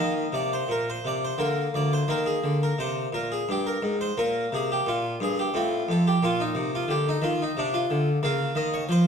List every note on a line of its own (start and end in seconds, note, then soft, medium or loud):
0.00 0.25 D#3 medium
0.00 1.34 A#3 soft
0.00 0.34 D#5 medium
0.32 0.62 C3 soft
0.32 0.52 D5 medium
0.53 0.70 C5 medium
0.68 0.97 A#2 medium
0.68 0.88 A#4 medium
0.90 1.05 C5 medium
1.05 1.32 C3 soft
1.05 1.23 D5 medium
1.25 1.40 C5 medium
1.38 1.66 D3 medium
1.38 2.04 A#3 soft
1.38 1.69 A#4 medium
1.74 2.02 D2 soft
1.74 1.91 D5 medium
1.93 2.09 C5 medium
2.08 2.36 D#3 medium
2.08 4.13 A#3 soft
2.08 2.26 A#4 medium
2.26 2.55 G#4 medium
2.44 2.71 D3 medium
2.63 2.79 A#4 medium
2.79 3.06 C3 medium
2.79 3.08 C5 medium
3.13 3.40 A#2 medium
3.13 3.31 A#4 medium
3.32 3.48 G#4 medium
3.49 3.76 G2 medium
3.49 3.67 G4 medium
3.67 3.95 A#4 medium
3.82 4.10 G#2 medium
4.01 4.17 C5 medium
4.17 4.45 A#2 medium
4.17 5.51 A#3 soft
4.17 4.48 A#4 medium
4.52 4.80 C3 soft
4.52 4.70 G#4 medium
4.72 4.88 G4 medium
4.86 5.14 A#2 medium
4.86 5.17 F4 medium
5.20 5.48 G2 medium
5.20 5.39 G#4 medium
5.39 5.55 G4 medium
5.54 5.81 A2 medium
5.54 6.19 C4 soft
5.54 5.89 F4 medium
5.89 6.16 F2 medium
5.89 6.07 A4 medium
6.07 6.24 G4 medium
6.23 6.50 A#2 medium
6.23 8.20 A#3 soft
6.23 6.41 F4 loud
6.40 6.69 D#4 medium
6.55 6.82 C3 medium
6.75 6.91 F4 medium
6.88 7.16 D3 medium
6.88 7.07 G4 loud
7.09 7.24 D#4 medium
7.22 7.49 D#3 medium
7.22 7.40 F4 medium
7.42 7.58 D#4 medium
7.57 7.84 C3 medium
7.57 7.75 D4 loud
7.74 8.07 F4 medium
7.90 8.17 D3 medium
8.23 8.50 C#3 medium
8.23 9.07 A#3 soft
8.23 8.57 F5 loud
8.55 8.82 D#3 medium
8.55 8.73 D#5 loud
8.74 8.90 C#5 medium
8.89 9.07 F3 medium
8.89 9.07 C5 loud